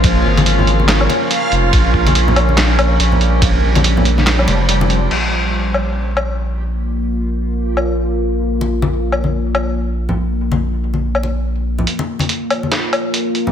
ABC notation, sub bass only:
X:1
M:4/4
L:1/8
Q:"Swing 16ths" 1/4=142
K:Bbdor
V:1 name="Sub bass" clef=bass
B,,, A,,,4 z2 F,,, | B,,,6 B,,,2- | B,,, B,,,4 F,,,3 | B,,,8- |
B,,,8- | B,,,8- | B,,,8 | z8 |]